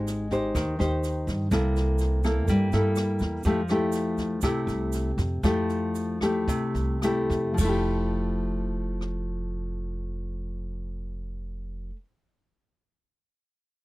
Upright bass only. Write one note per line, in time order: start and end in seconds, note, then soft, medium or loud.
0.00 0.56 G#1 medium
0.55 0.77 D#2 medium
0.80 1.25 D#2 medium
1.27 1.50 G2 medium
1.51 2.48 C2 loud
2.48 2.71 G2 medium
2.73 3.18 G2 medium
3.21 3.44 E2 medium
3.45 4.43 F2 medium
4.43 4.66 C2 medium
4.67 5.14 C2 medium
5.18 5.41 F2 medium
5.43 6.48 F2 loud
6.48 6.73 C2 medium
6.74 7.26 C2 medium
7.30 7.56 F2 medium
7.59 11.90 F1 medium